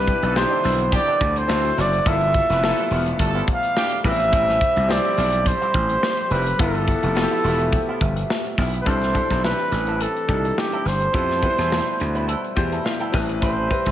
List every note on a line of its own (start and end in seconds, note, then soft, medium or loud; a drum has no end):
0.00 0.12 C2 loud
0.00 2.04 D3 medium
0.00 1.45 G3 medium
0.00 2.04 C4 medium
0.00 0.20 D4 medium
0.00 1.46 D4 medium
0.00 0.21 E4 medium
0.00 1.47 E4 medium
0.00 0.21 G4 medium
0.00 0.24 B4 medium
0.00 0.39 B4 medium
0.07 0.20 D4 medium
0.07 0.20 E4 medium
0.07 0.20 G4 medium
0.07 muted clean electric guitar stroke soft
0.07 kick medium
0.07 closed hi-hat medium
0.22 0.44 B1 loud
0.22 0.34 E3 medium
0.22 0.34 B3 medium
0.22 0.35 D4 medium
0.22 0.34 D4 medium
0.22 0.34 F4 medium
0.22 0.34 A4 medium
0.22 closed hi-hat medium
0.35 1.17 D4 medium
0.35 0.59 D4 loud
0.35 0.43 D#4 medium
0.35 0.59 E4 medium
0.35 1.17 G4 medium
0.35 0.59 G4 loud
0.35 1.17 C5 medium
0.35 0.93 C5 medium
0.35 muted clean electric guitar stroke soft
0.35 snare loud
0.42 1.20 E4 medium
0.50 0.62 E3 medium
0.50 0.63 B3 medium
0.50 0.63 D4 medium
0.63 0.97 B1 medium
0.63 0.84 E3 loud
0.63 0.79 B3 loud
0.63 0.78 D4 medium
0.63 snare soft
0.63 open hi-hat medium
0.79 muted clean electric guitar stroke soft
0.79 closed hi-hat medium
0.92 1.15 D4 loud
0.92 1.15 E4 loud
0.92 1.15 G4 loud
0.92 1.40 D5 loud
0.92 muted clean electric guitar stroke soft
0.92 kick medium
0.92 closed hi-hat loud
1.07 1.19 E3 medium
1.07 1.19 B3 medium
1.07 1.20 D4 medium
1.07 closed hi-hat soft
1.20 1.42 D2 medium
1.20 muted clean electric guitar stroke soft
1.20 kick loud
1.20 closed hi-hat medium
1.36 1.82 C5 loud
1.36 muted clean electric guitar stroke soft
1.36 closed hi-hat medium
1.48 1.70 D2 loud
1.48 2.05 F#3 medium
1.48 6.56 A3 medium
1.48 1.95 C4 medium
1.48 1.95 E4 medium
1.48 1.95 F#4 medium
1.48 2.06 F#4 medium
1.48 1.95 A4 medium
1.48 snare loud
1.64 muted clean electric guitar stroke soft
1.64 closed hi-hat soft
1.77 1.99 F#1 medium
1.77 1.98 F#3 medium
1.77 1.93 C4 medium
1.77 1.92 D4 loud
1.77 2.10 D5 loud
1.77 snare soft
1.77 open hi-hat medium
1.93 muted clean electric guitar stroke medium
1.93 closed hi-hat medium
2.05 2.39 G1 loud
2.05 2.26 F3 medium
2.05 6.56 F3 medium
2.05 6.56 G3 medium
2.05 2.13 A#3 medium
2.05 4.03 B3 medium
2.05 2.21 B3 loud
2.05 2.47 E4 medium
2.05 2.20 E4 medium
2.05 2.47 F4 medium
2.05 4.03 G4 medium
2.05 2.48 A4 medium
2.05 3.20 E5 loud
2.05 kick loud
2.05 closed hi-hat loud
2.12 2.50 B3 medium
2.21 muted clean electric guitar stroke medium
2.21 closed hi-hat soft
2.34 2.47 A3 medium
2.34 2.47 F4 medium
2.34 2.47 A4 medium
2.34 muted clean electric guitar stroke soft
2.34 kick medium
2.34 closed hi-hat medium
2.50 2.71 F1 loud
2.50 2.62 F3 medium
2.50 2.60 B3 medium
2.50 2.63 B3 medium
2.50 2.63 E4 medium
2.50 2.60 F4 medium
2.50 2.60 B4 medium
2.50 snare soft
2.50 closed hi-hat medium
2.62 2.86 A3 loud
2.62 2.69 A#3 medium
2.62 3.44 E4 medium
2.62 3.44 F4 medium
2.62 2.86 F4 loud
2.62 3.44 A4 medium
2.62 2.86 A4 loud
2.62 snare loud
2.68 3.47 B3 medium
2.78 2.90 F3 medium
2.78 2.91 B3 medium
2.78 2.91 E4 medium
2.78 closed hi-hat soft
2.91 3.12 E1 loud
2.91 3.11 F3 medium
2.91 3.07 B3 loud
2.91 3.06 E4 medium
2.91 open hi-hat medium
3.06 muted clean electric guitar stroke soft
3.06 closed hi-hat medium
3.19 3.40 G1 loud
3.19 3.42 A3 loud
3.19 3.42 F4 loud
3.19 3.42 A4 loud
3.19 muted clean electric guitar stroke soft
3.19 kick medium
3.19 closed hi-hat loud
3.34 3.46 F3 medium
3.34 3.47 B3 medium
3.34 3.47 E4 medium
3.34 closed hi-hat soft
3.48 4.02 F5 loud
3.48 kick medium
3.48 closed hi-hat medium
3.62 muted clean electric guitar stroke soft
3.62 closed hi-hat medium
3.76 3.99 D4 loud
3.76 3.99 E4 loud
3.76 3.99 G4 loud
3.76 snare loud
3.91 muted clean electric guitar stroke soft
3.91 closed hi-hat soft
4.04 4.59 A1 loud
4.04 4.24 G3 medium
4.04 4.11 B3 medium
4.04 4.19 C4 loud
4.04 6.57 C4 medium
4.04 4.74 E4 medium
4.04 4.18 E4 loud
4.04 8.83 G4 medium
4.04 4.74 G4 medium
4.04 4.74 B4 medium
4.04 4.93 E5 loud
4.04 kick medium
4.04 snare soft
4.04 open hi-hat medium
4.11 4.77 C4 medium
4.19 muted clean electric guitar stroke soft
4.19 closed hi-hat medium
4.32 4.53 G3 medium
4.32 4.47 C4 medium
4.32 4.46 E4 loud
4.32 kick loud
4.32 closed hi-hat loud
4.47 muted clean electric guitar stroke soft
4.47 snare soft
4.47 closed hi-hat soft
4.60 muted clean electric guitar stroke soft
4.60 kick medium
4.60 closed hi-hat medium
4.75 4.98 C2 loud
4.75 4.87 G3 medium
4.75 4.88 C4 medium
4.75 4.88 E4 medium
4.75 closed hi-hat medium
4.88 5.70 C4 medium
4.88 5.70 E4 medium
4.88 5.71 G4 medium
4.88 5.71 C5 medium
4.88 5.49 D5 loud
4.88 muted clean electric guitar stroke soft
4.88 snare loud
5.04 5.16 G3 medium
5.04 5.16 C4 medium
5.04 5.17 E4 medium
5.04 closed hi-hat soft
5.17 5.50 B1 loud
5.17 5.38 G3 medium
5.17 5.33 C4 medium
5.17 5.32 E4 medium
5.17 snare soft
5.17 open hi-hat medium
5.32 muted clean electric guitar stroke soft
5.32 closed hi-hat medium
5.46 6.34 C5 loud
5.46 muted clean electric guitar stroke soft
5.46 kick medium
5.46 closed hi-hat loud
5.61 5.73 G3 medium
5.61 5.73 C4 medium
5.61 5.74 E4 medium
5.61 closed hi-hat soft
5.74 5.96 A1 medium
5.74 muted clean electric guitar stroke soft
5.74 kick medium
5.74 closed hi-hat medium
5.89 muted clean electric guitar stroke medium
5.89 closed hi-hat medium
6.03 snare loud
6.17 muted clean electric guitar stroke soft
6.17 closed hi-hat soft
6.30 6.52 F1 medium
6.30 6.51 G3 medium
6.30 6.46 C4 medium
6.30 6.45 E4 loud
6.30 6.63 B4 loud
6.30 open hi-hat medium
6.46 muted clean electric guitar stroke soft
6.46 closed hi-hat medium
6.59 6.92 G1 loud
6.59 6.79 F3 medium
6.59 8.85 F3 medium
6.59 8.85 A3 medium
6.59 7.01 B3 medium
6.59 6.74 B3 medium
6.59 8.85 B3 medium
6.59 7.01 E4 medium
6.59 6.73 E4 medium
6.59 7.01 F4 medium
6.59 7.01 A4 medium
6.59 8.31 A4 loud
6.59 8.85 E5 medium
6.59 kick loud
6.59 closed hi-hat loud
6.75 muted clean electric guitar stroke soft
6.75 closed hi-hat soft
6.87 muted clean electric guitar stroke soft
6.87 kick medium
6.87 closed hi-hat medium
7.03 7.24 F1 loud
7.03 7.15 F3 medium
7.03 7.15 B3 medium
7.03 7.16 E4 medium
7.03 closed hi-hat medium
7.15 7.97 B3 medium
7.15 7.97 E4 medium
7.15 7.97 F4 medium
7.15 7.23 F#4 medium
7.15 muted clean electric guitar stroke soft
7.15 snare loud
7.23 8.01 G4 medium
7.31 7.43 F3 medium
7.31 7.44 B3 medium
7.31 7.44 E4 medium
7.31 closed hi-hat soft
7.44 7.77 E1 loud
7.44 7.65 F3 medium
7.44 7.59 B3 loud
7.44 7.58 E4 medium
7.44 open hi-hat medium
7.59 muted clean electric guitar stroke medium
7.59 closed hi-hat soft
7.72 muted clean electric guitar stroke soft
7.72 kick medium
7.72 closed hi-hat medium
7.88 8.00 F3 medium
7.88 8.01 B3 medium
7.88 8.01 E4 medium
8.01 8.22 G1 medium
8.01 muted clean electric guitar stroke soft
8.01 kick medium
8.01 closed hi-hat medium
8.17 muted clean electric guitar stroke soft
8.17 closed hi-hat medium
8.30 muted clean electric guitar stroke soft
8.30 snare loud
8.45 muted clean electric guitar stroke medium
8.45 closed hi-hat soft
8.58 8.79 B1 medium
8.58 8.73 F3 medium
8.58 8.72 B3 medium
8.58 8.72 E4 medium
8.58 kick medium
8.58 snare soft
8.58 open hi-hat medium
8.73 8.88 F3 medium
8.73 8.86 B3 medium
8.73 8.86 E4 medium
8.73 closed hi-hat medium
8.81 9.07 D4 medium
8.81 8.90 B4 medium
8.86 9.19 C2 medium
8.86 11.12 E3 medium
8.86 13.92 G3 medium
8.86 13.92 A3 medium
8.86 9.13 C4 medium
8.86 11.12 C4 medium
8.86 9.07 E4 medium
8.86 9.13 E4 medium
8.86 9.07 G4 medium
8.86 11.12 G4 medium
8.86 9.07 A4 medium
8.86 9.14 A4 medium
8.86 9.43 C5 loud
8.86 kick loud
8.86 closed hi-hat medium
9.01 snare soft
9.01 closed hi-hat soft
9.13 9.96 D4 medium
9.13 9.96 E4 medium
9.13 9.96 G4 medium
9.13 9.97 A4 medium
9.13 muted clean electric guitar stroke soft
9.13 kick medium
9.13 closed hi-hat medium
9.30 9.52 B1 medium
9.30 9.42 C4 soft
9.30 9.43 E4 medium
9.30 9.43 A4 medium
9.30 kick medium
9.30 snare soft
9.30 closed hi-hat soft
9.43 9.64 C4 medium
9.43 9.58 E4 medium
9.43 9.58 A4 medium
9.43 10.03 B4 loud
9.43 snare loud
9.59 muted clean electric guitar stroke soft
9.72 10.05 A1 medium
9.72 muted clean electric guitar stroke soft
9.72 snare soft
9.72 closed hi-hat medium
9.87 9.99 C4 soft
9.87 10.00 E4 medium
9.87 10.00 A4 medium
9.87 closed hi-hat soft
10.01 10.60 A4 medium
10.01 muted clean electric guitar stroke soft
10.01 closed hi-hat medium
10.15 muted clean electric guitar stroke soft
10.15 closed hi-hat soft
10.28 10.50 C2 medium
10.28 10.90 D4 medium
10.28 10.36 D#4 soft
10.28 10.90 G4 medium
10.28 10.90 A4 medium
10.28 kick medium
10.28 closed hi-hat medium
10.34 10.93 E4 medium
10.44 muted clean electric guitar stroke soft
10.44 closed hi-hat soft
10.57 10.89 G4 medium
10.57 muted clean electric guitar stroke soft
10.57 snare loud
10.72 10.84 C4 medium
10.72 10.85 E4 medium
10.72 10.85 A4 medium
10.72 closed hi-hat soft
10.85 11.07 G1 medium
10.85 12.57 C5 loud
10.85 muted clean electric guitar stroke soft
10.85 snare soft
10.85 open hi-hat medium
11.01 muted clean electric guitar stroke soft
11.01 closed hi-hat medium
11.13 11.47 F2 medium
11.13 13.12 F3 medium
11.13 11.35 B3 medium
11.13 11.40 B3 medium
11.13 11.35 E4 medium
11.13 11.41 E4 medium
11.13 13.12 E4 medium
11.13 11.35 G4 medium
11.13 11.35 A4 medium
11.13 11.41 A4 medium
11.13 kick loud
11.13 closed hi-hat medium
11.29 snare soft
11.29 closed hi-hat soft
11.42 12.24 B2 medium
11.42 12.24 E4 medium
11.42 12.25 G4 medium
11.42 11.50 B4 medium
11.42 muted clean electric guitar stroke soft
11.42 kick medium
11.42 closed hi-hat medium
11.49 12.28 C5 medium
11.58 11.80 E2 medium
11.58 11.69 B3 medium
11.58 11.70 E4 medium
11.58 11.70 A4 medium
11.58 snare soft
11.58 closed hi-hat soft
11.70 11.91 B3 medium
11.70 11.86 E4 medium
11.70 11.85 A4 medium
11.70 snare loud
11.86 muted clean electric guitar stroke soft
11.99 12.33 D2 medium
11.99 muted clean electric guitar stroke soft
11.99 closed hi-hat medium
12.14 12.26 B3 medium
12.14 12.26 E4 medium
12.14 12.28 B4 medium
12.14 closed hi-hat soft
12.27 12.48 B3 medium
12.27 12.42 E4 medium
12.27 12.41 A4 medium
12.27 closed hi-hat medium
12.43 muted clean electric guitar stroke soft
12.43 closed hi-hat soft
12.55 12.78 E2 medium
12.55 13.13 B2 medium
12.55 13.11 E4 medium
12.55 13.11 G4 medium
12.55 13.14 C5 medium
12.55 muted clean electric guitar stroke soft
12.55 kick medium
12.55 closed hi-hat medium
12.71 12.84 B3 soft
12.71 12.84 E4 medium
12.71 12.84 A4 medium
12.71 closed hi-hat soft
12.85 12.99 F5 medium
12.85 muted clean electric guitar stroke soft
12.85 snare loud
13.00 13.13 B3 medium
13.00 13.14 E4 medium
13.00 13.14 A4 medium
13.00 13.13 G5 medium
13.00 closed hi-hat soft
13.12 13.68 A1 medium
13.12 13.59 C4 medium
13.12 13.92 C4 medium
13.12 13.60 E4 medium
13.12 13.60 G4 medium
13.12 13.60 B4 medium
13.12 13.92 E5 medium
13.12 13.40 A5 medium
13.12 kick medium
13.12 snare soft
13.12 open hi-hat medium
13.29 muted clean electric guitar stroke soft
13.29 closed hi-hat medium
13.41 13.68 C4 medium
13.41 13.69 G4 medium
13.41 13.69 B4 medium
13.41 13.92 C5 medium
13.41 kick loud
13.41 closed hi-hat medium
13.70 13.92 C4 medium
13.70 13.92 E4 medium
13.70 13.92 G4 medium
13.70 13.92 B4 medium
13.70 muted clean electric guitar stroke soft
13.70 kick medium
13.70 closed hi-hat medium
13.85 13.92 C2 medium
13.85 13.92 C4 medium
13.85 13.92 G4 medium
13.85 13.92 B4 medium
13.85 kick medium
13.85 snare soft
13.85 closed hi-hat soft